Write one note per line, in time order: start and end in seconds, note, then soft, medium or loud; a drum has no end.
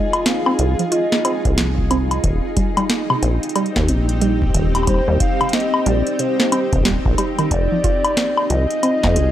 0.00 9.32 D#4 medium
0.00 2.20 F4 medium
0.00 2.20 G#4 medium
0.00 0.27 D#5 loud
0.13 closed hi-hat soft
0.13 high woodblock medium
0.26 0.39 C4 medium
0.26 0.91 F5 loud
0.26 snare loud
0.26 closed hi-hat medium
0.46 0.51 C4 loud
0.46 high woodblock medium
0.59 0.76 C2 medium
0.59 closed hi-hat medium
0.79 0.84 F3 medium
0.79 closed hi-hat medium
0.92 1.05 F4 medium
0.92 1.54 D#5 loud
0.92 closed hi-hat medium
1.12 snare medium
1.25 1.38 C4 loud
1.25 closed hi-hat medium
1.25 high woodblock medium
1.45 2.20 C2 medium
1.45 kick loud
1.45 closed hi-hat medium
1.58 1.66 F3 medium
1.58 snare loud
1.58 closed hi-hat medium
1.78 kick loud
1.91 2.10 C4 medium
1.91 closed hi-hat medium
1.91 high woodblock medium
2.11 closed hi-hat medium
2.11 high woodblock soft
2.24 2.41 D#1 medium
2.24 2.37 D#3 medium
2.24 7.47 C4 medium
2.24 7.47 G4 medium
2.24 kick loud
2.24 closed hi-hat medium
2.57 2.70 G3 medium
2.57 kick loud
2.57 closed hi-hat medium
2.77 2.82 G3 loud
2.77 closed hi-hat medium
2.77 high woodblock medium
2.90 snare loud
2.90 closed hi-hat medium
3.10 3.15 C3 medium
3.10 high woodblock medium
3.23 3.40 A#1 medium
3.23 3.36 C4 medium
3.23 closed hi-hat medium
3.43 closed hi-hat medium
3.49 closed hi-hat soft
3.56 3.69 G3 loud
3.56 closed hi-hat medium
3.56 high woodblock soft
3.66 closed hi-hat soft
3.76 3.90 D#2 loud
3.76 kick loud
3.76 snare medium
3.88 4.51 A#1 medium
3.88 3.96 C3 medium
3.88 closed hi-hat medium
4.09 closed hi-hat soft
4.21 4.41 G3 medium
4.21 closed hi-hat medium
4.42 kick loud
4.44 kick medium
4.50 kick medium
4.54 5.03 D#1 loud
4.54 4.68 D#3 medium
4.54 kick medium
4.54 closed hi-hat medium
4.61 kick soft
4.66 kick soft
4.75 closed hi-hat medium
4.75 high woodblock soft
4.76 high woodblock soft
4.83 high woodblock soft
4.87 5.00 G3 medium
4.87 5.18 C5 loud
4.87 kick loud
4.87 closed hi-hat medium
4.87 high woodblock soft
4.94 high woodblock soft
4.98 high woodblock soft
5.08 5.18 D#2 loud
5.08 5.13 G3 loud
5.20 5.55 F5 loud
5.20 kick loud
5.20 closed hi-hat medium
5.41 5.46 C3 medium
5.41 closed hi-hat soft
5.41 high woodblock medium
5.49 closed hi-hat soft
5.53 5.66 C4 medium
5.53 5.88 D#5 loud
5.53 snare loud
5.53 closed hi-hat medium
5.60 closed hi-hat soft
5.74 high woodblock medium
5.86 6.03 A#1 medium
5.86 5.99 G3 loud
5.86 6.21 D5 medium
5.86 closed hi-hat medium
6.07 closed hi-hat soft
6.19 6.27 C3 medium
6.19 6.85 C5 medium
6.19 closed hi-hat medium
6.40 snare medium
6.52 6.65 C4 medium
6.52 closed hi-hat medium
6.52 high woodblock medium
6.73 6.99 D#1 medium
6.73 6.78 C3 medium
6.73 kick loud
6.73 closed hi-hat soft
6.81 kick medium
6.85 6.93 G3 medium
6.85 snare loud
6.85 closed hi-hat medium
6.92 kick medium
7.06 7.16 A#1 medium
7.06 kick loud
7.18 7.26 G3 medium
7.18 closed hi-hat medium
7.18 high woodblock soft
7.39 7.47 D#3 loud
7.39 closed hi-hat medium
7.39 high woodblock soft
7.51 7.68 F1 loud
7.51 9.32 F4 medium
7.51 9.32 G#4 medium
7.51 8.46 D5 loud
7.51 kick loud
7.51 closed hi-hat medium
7.72 7.76 F3 medium
7.84 7.97 F4 medium
7.84 kick loud
7.84 closed hi-hat medium
8.05 closed hi-hat soft
8.05 high woodblock medium
8.17 8.30 C4 loud
8.17 snare loud
8.17 closed hi-hat medium
8.37 high woodblock medium
8.50 8.67 C2 medium
8.50 8.58 F3 medium
8.50 9.32 D#5 loud
8.50 closed hi-hat medium
8.71 closed hi-hat soft
8.83 9.02 C4 medium
8.83 closed hi-hat medium
8.83 high woodblock soft
9.03 9.17 F2 medium
9.03 kick loud
9.03 snare medium
9.16 9.32 C2 medium
9.16 9.29 G#3 medium
9.16 closed hi-hat medium